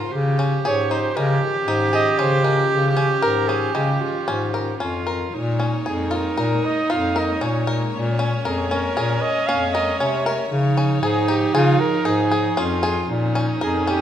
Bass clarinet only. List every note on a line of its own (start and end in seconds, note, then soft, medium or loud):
0.13 0.59 C#3 loud
0.66 1.11 G#2 medium
1.18 1.40 C#3 loud
1.67 2.13 G#2 loud
2.19 2.65 C#3 medium
2.71 3.17 C#3 loud
3.23 3.69 G#2 medium
3.75 3.98 C#3 medium
4.28 4.74 G#2 medium
4.80 5.27 F2 medium
5.33 5.79 A#2 loud
5.85 6.31 F2 medium
6.38 6.61 A#2 medium
6.91 7.36 F2 loud
7.42 7.88 A#2 medium
7.93 8.40 A#2 loud
8.45 8.91 F2 loud
8.97 9.20 A#2 loud
9.49 9.94 F2 medium
10.00 10.46 C3 loud
10.51 10.97 C#3 loud
11.02 11.48 G#2 loud
11.53 11.77 C#3 loud
12.05 12.51 G#2 loud
12.57 13.03 F2 loud
13.09 13.55 A#2 loud
13.62 14.01 F2 loud